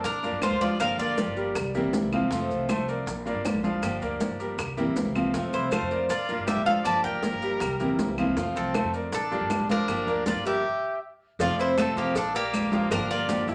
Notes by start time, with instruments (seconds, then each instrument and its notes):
Already playing: grand piano A#4 D5
0.03 upright bass A#1, trumpet D4, cuban tres A#4, muted steel-string acoustic guitar stroke, high bongo, high conga, maracas
0.23 steel-string acoustic guitar G3 D4 F4, grand piano A#3 A#4 D5, high bongo, high conga, maracas
0.32 upright bass G1
0.42 steel-string acoustic guitar D3 G3 D4 F4, trumpet F4, cuban tres C5, high bongo, low bongo, high conga, claves, maracas
0.51 upright bass D2
0.61 grand piano F3 F4 F5, steel-string acoustic guitar G3 D4 F4, trumpet F4, cuban tres D5, high conga, maracas
0.80 upright bass G1, steel-string acoustic guitar D3 F3 A#3 D4 G4, trumpet A#4, cuban tres F5, high bongo, high conga, claves, maracas
0.98 upright bass D2, grand piano A#3 A#4 D5, trumpet F4, cuban tres D5, high bongo, maracas
1.18 steel-string acoustic guitar F3 A#3 D4 G4, high bongo, high conga, maracas
1.27 upright bass G1
1.36 grand piano G3 G4 A#4, high bongo, high conga, maracas
1.55 upright bass C2, muted steel-string acoustic guitar stroke, high bongo, high conga, low conga, claves, maracas
1.74 steel-string acoustic guitar E3 A#3 C4 E4, grand piano G3 G4 A#4, high bongo, high conga, low conga, maracas
1.84 upright bass A#1
1.93 steel-string acoustic guitar E3 A#3 C4 E4, high bongo, low bongo, high conga, maracas
2.02 upright bass C2
2.12 steel-string acoustic guitar E3 A#3 C4 E4, grand piano F3 F4 F5, high conga, claves, maracas
2.31 upright bass F2, steel-string acoustic guitar C3 F3 A3 C4 F4, grand piano F3 F4 F5, high bongo, high conga, maracas
2.50 upright bass C2, high bongo, high conga, maracas
2.69 steel-string acoustic guitar F3 A3 C4 F4, grand piano A3 A4 C5, high bongo, high conga, claves, maracas
2.78 upright bass C2
2.88 grand piano A#4 D5, high bongo, high conga, maracas
3.06 upright bass A#1, muted steel-string acoustic guitar stroke, high bongo, high conga, maracas
3.25 steel-string acoustic guitar G3 D4 F4, grand piano A#3 A#4 D5, high bongo, high conga, maracas
3.35 upright bass G1
3.44 steel-string acoustic guitar D3 G3 D4 F4, high bongo, low bongo, high conga, claves, maracas
3.54 upright bass A#1
3.63 grand piano F3 F4 F5, steel-string acoustic guitar G3 D4 F4, high conga, maracas
3.82 upright bass G1, steel-string acoustic guitar D3 F3 A#3 D4 G4, high bongo, high conga, claves, maracas
4.01 upright bass D2, grand piano A#3 A#4 D5, high bongo, high conga, maracas
4.20 steel-string acoustic guitar F3 A#3 D4 G4, high bongo, high conga, maracas
4.30 upright bass G1
4.39 grand piano G3 G4 A#4, high bongo, high conga, maracas
4.58 upright bass C2, muted steel-string acoustic guitar stroke, high bongo, high conga, low conga, claves, maracas
4.77 steel-string acoustic guitar E3 A#3 C4 E4, grand piano G3 G4 A#4, high bongo, high conga, maracas
4.86 upright bass A#1
4.96 steel-string acoustic guitar E3 A#3 C4 E4, high bongo, low bongo, high conga, maracas
5.05 upright bass C2
5.15 steel-string acoustic guitar E3 A#3 C4 E4, grand piano F3 F4 F5, high conga, claves, maracas
5.34 upright bass F2, steel-string acoustic guitar C3 F3 A3 C4 F4, grand piano F3 F4 F5, high bongo, maracas
5.53 upright bass C2, trumpet E4, cuban tres C5, high bongo, high conga, maracas
5.71 steel-string acoustic guitar F3 A3 C4 F4, grand piano A3 A4 C5, trumpet F4, cuban tres C5, high bongo, high conga, claves, maracas
5.82 upright bass F2
5.91 grand piano A#4 D5, high bongo, high conga, maracas
6.09 upright bass A#1, trumpet F4, cuban tres D5, muted steel-string acoustic guitar stroke, high bongo, high conga, maracas
6.29 steel-string acoustic guitar G3 D4 F4, grand piano A#3 A#4 D5, high bongo, high conga, maracas
6.38 upright bass G1
6.46 steel-string acoustic guitar D3 G3 D4 F4, trumpet G4, cuban tres E5, high bongo, low bongo, high conga, claves, maracas
6.56 upright bass A#1
6.65 grand piano F3 F4 F5, steel-string acoustic guitar G3 D4 F4, trumpet A4, cuban tres F5, high conga, maracas
6.83 upright bass G1, steel-string acoustic guitar D3 F3 A#3 D4 G4, trumpet D5, cuban tres A5, high bongo, claves, maracas
7.03 upright bass D2, grand piano A#3 A#4 D5, trumpet A#4, cuban tres G5, high bongo, high conga, maracas
7.23 steel-string acoustic guitar F3 A#3 D4 G4, high bongo, high conga, maracas
7.32 upright bass G1
7.42 grand piano G3 G4 A#4, high bongo, high conga, maracas
7.60 upright bass C2, muted steel-string acoustic guitar stroke, high bongo, high conga, low conga, claves, maracas
7.80 steel-string acoustic guitar E3 A#3 C4 E4, grand piano G3 G4 A#4, high bongo, high conga, low conga, maracas
7.89 upright bass A#1
7.99 steel-string acoustic guitar E3 A#3 C4 E4, high bongo, low bongo, high conga, maracas
8.08 upright bass C2
8.18 steel-string acoustic guitar E3 A#3 C4 E4, grand piano F3 F4 F5, high conga, claves, maracas
8.36 upright bass F2, steel-string acoustic guitar C3 F3 A3 C4 F4, grand piano F3 F4 F5, high bongo, high conga, maracas
8.55 upright bass C2, trumpet C4, cuban tres A4, high bongo, high conga, maracas
8.74 steel-string acoustic guitar F3 A3 C4 F4, grand piano A3 A4 C5, high bongo, high conga, claves, maracas
8.84 upright bass F2
8.93 grand piano A#4 D5, high bongo, high conga, maracas
9.12 upright bass A#1, trumpet D4, cuban tres A4, muted steel-string acoustic guitar stroke, high bongo, high conga, maracas
9.31 steel-string acoustic guitar G3 D4 F4, grand piano A#3 G4 D5, high bongo, high conga, maracas
9.41 upright bass G1
9.50 steel-string acoustic guitar D3 G3 D4 F4, high bongo, low bongo, high conga, claves, maracas
9.60 upright bass A#1
9.69 grand piano F3 F4 F5, steel-string acoustic guitar G3 D4 F4, trumpet D4, cuban tres A#4, high conga, maracas
9.88 upright bass G1, steel-string acoustic guitar D3 F3 A#3 D4 G4, high bongo, claves, maracas
10.07 upright bass D2, grand piano A#3 A#4 D5, high bongo, maracas
10.26 steel-string acoustic guitar F3 A#3 D4 G4, trumpet F4, cuban tres D5, high bongo, high conga, maracas
10.35 upright bass G1
10.45 grand piano G3 G4 A#4, trumpet G4, cuban tres E5, high bongo, high conga, maracas
11.39 upright bass F1, steel-string acoustic guitar C3 F3 A3 C4 F4, grand piano F3 F4 F5, trumpet F4, cuban tres D5, cowbell, high conga, maracas
11.49 upright bass F2
11.59 trumpet E4, cuban tres C5, high conga, maracas
11.77 steel-string acoustic guitar C3 F3 A3 C4 F4, grand piano A3 A4 C5, trumpet C4, cuban tres A4, cowbell, high conga, claves, maracas
11.96 upright bass F2, grand piano F3 F4 F5, trumpet A#3, cuban tres G4, cowbell, high conga, maracas
12.15 upright bass A#1, trumpet D4, cuban tres A4, muted steel-string acoustic guitar stroke, cowbell, high conga, maracas
12.34 grand piano A#3 A#4 D5, trumpet A#3, cuban tres G4, high conga, maracas
12.53 steel-string acoustic guitar D3 G3 D4 F4, cowbell, high conga, claves, maracas
12.72 grand piano F3 F4 F5, steel-string acoustic guitar G3 D4 F4, cowbell, high conga, maracas
12.90 upright bass G1, steel-string acoustic guitar D3 F3 A#3 D4 G4, trumpet D4, cuban tres A#4, cowbell, claves, maracas
13.00 upright bass G2
13.10 grand piano A#3 A#4 D5, trumpet F4, cuban tres D5, high conga, maracas
13.29 steel-string acoustic guitar D3 F3 A#3 D4 G4, cowbell, high conga, maracas
13.47 upright bass G1, grand piano E4 E5, cowbell, high conga, maracas